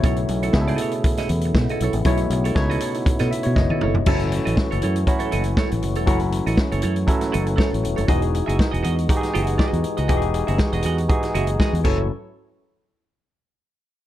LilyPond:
<<
  \new Staff \with { instrumentName = "Clean electric guitar" } { \time 4/4 \key fis \dorian \tempo 4 = 119 <e' a' cis''>16 r8 <e' a' cis''>16 r16 <e' a' dis''>16 <e' a' cis''>16 r8 <e' a' dis''>16 r8. <e' a' dis''>16 <e' a' cis''>16 r16 | <e' a' cis''>16 r8 <e' a' cis''>16 r16 <e' a' dis''>16 <e' a' cis''>16 r8 <e' a' dis''>16 r8. <e' a' dis''>16 <e' a' cis''>16 r16 | <e' a' cis''>16 r8 <e' a' dis''>16 r16 <e' a' cis''>16 <e' a' cis''>16 r8 <e' a' cis''>16 <e' a' dis''>16 r16 <e' a' cis''>16 r8 <e' a' cis''>16 | <e' a' cis''>16 r8 <e' a' dis''>16 r16 <e' a' cis''>16 <e' a' cis''>16 r8. <e' a' dis''>16 r16 <e' a' cis''>16 r8 <e' a' cis''>16 |
<fis' gis' dis''>16 r8 <fis' gis' e''>16 r16 <fis' gis' dis''>16 <fis' gis' dis''>16 r8. <fis' gis' e''>8 <fis' gis' dis''>8 r16 <fis' gis' dis''>16 | <fis' gis' dis''>16 r8 <fis' gis' e''>16 r16 <fis' gis' dis''>16 <fis' gis' dis''>16 r8. <fis' gis' e''>16 r16 <fis' gis' dis''>16 r16 <a' cis'' e''>16 r16 | r1 | }
  \new Staff \with { instrumentName = "Tine electric piano" } { \time 4/4 \key fis \dorian <b, a e' cis''>8 r8 <b, a e' gis' a'>4. r4. | <b, a e' cis''>8. r16 <b, a dis' e' cis''>4. e''16 cis''16 dis''4 | <fis cis' e' a'>4. r8 <fis cis' e' fis'>4. r8 | <fis cis' e' fis'>4. r8 <fis cis' e' a'>4. r8 |
<e dis' fis' gis'>4. r8 <e dis' fis' g' gis'>4. r8 | <e dis' fis' g' gis'>4. r8 <e dis' fis' gis'>4. <fis cis' e' a'>8 | r1 | }
  \new Staff \with { instrumentName = "Tonewheel organ" } { \time 4/4 \key fis \dorian <a b e'>1~ | <a b e'>1 | <a cis' fis'>1~ | <a cis' fis'>1 |
<gis dis' fis'>1~ | <gis dis' fis'>2.~ <gis dis' fis'>8 <e a cis' fis'>8 | r1 | }
  \new Staff \with { instrumentName = "Tonewheel organ" } { \clef bass \time 4/4 \key fis \dorian cis1~ | cis1 | e1~ | e1~ |
e1~ | e2.~ e8 r8 | r1 | }
  \new Staff \with { instrumentName = "Fingered electric bass" } { \clef bass \time 4/4 \key fis \dorian b,,8 b,,8 cis,8 r4 e,8 b,16 r16 b,,16 a,,16 | b,,8 b,,8 cis,8 r8. b,16 r16 b,16 fis,,16 r16 fis,,16 e,,16 | fis,,8. a,,16 r16 fis,,16 fis,8 r8 fis,,8 r16 a,,16 fis,,16 e,,16 | fis,,8. a,,16 r16 fis,,16 fis,8 r8 fis,,8 r16 a,,16 e,,16 fis,,16 |
e,,8. fis,,16 r16 e,,16 e,8 r8 fis,,8 r16 e,16 r16 cis,16 | e,,8. fis,,16 r16 e,,16 e,8 r8 fis,,8 r16 e,16 fis,,8 | r1 | }
  \new DrumStaff \with { instrumentName = "Drums" } \drummode { \time 4/4 <hh bd>16 hh16 hh16 hh16 <bd sn>16 hh16 hh16 hh16 <hh bd>16 <hh sn>16 hh16 hh16 <bd sn>16 hh16 hh16 hh16 | <hh bd>16 hh16 hh16 hh16 <bd sn>16 hh16 hh16 hh16 <hh bd>16 <hh sn>16 hh16 hh16 <bd sn>16 tommh16 toml16 tomfh16 | <cymc bd>16 hh16 hh16 hh16 <bd sn>16 hh16 hh16 hh16 <hh bd>16 hh16 hh16 hh16 <bd sn>16 hh16 hh16 hh16 | <hh bd>16 hh16 hh16 hh16 <bd sn>16 hh16 hh16 hh16 <hh bd>16 <hh sn>16 hh16 hh16 <bd sn>16 hh16 hh16 hh16 |
<hh bd>16 hh16 hh16 hh16 <bd sn>16 hh16 hh16 hh16 <hh bd>16 <hh sn>16 hh16 hh16 <bd sn>16 hh16 hh16 hh16 | <hh bd>16 hh16 hh16 hh16 <bd sn>16 hh16 hh16 hh16 <hh bd>16 <hh sn>16 hh16 hh16 <bd sn>16 hh16 <cymc bd>8 | r4 r4 r4 r4 | }
>>